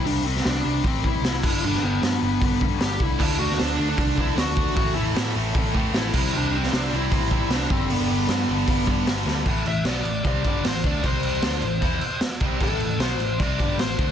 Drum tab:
CC |--------------x-|----------------|x---------------|--------------x-|
HH |o---o---o---o---|----o---o---o---|----o---o---o---|o---o---o---o---|
SD |---oo-------o---|-o--o-------o---|---oo-------o---|----o-------o---|
BD |--------o-o---o-|--------o-o---o-|o-------o-o---o-|o-------o-o---o-|

CC |----------------|----------------|x-x-x-x-x-x-x-x-|x-x-x-x-x-x-x-x-|
HH |----o---o---o---|o---o---o---o---|----------------|----------------|
SD |---oo-------o---|----o-------o-o-|----o-------o---|----o-------o---|
BD |--------o-o---o-|--------o-o-----|o-------o-o---o-|o-------o-----o-|

CC |x-x-x-x-x-x-x-x-|
HH |----------------|
SD |----o-------o---|
BD |o-------o-o---o-|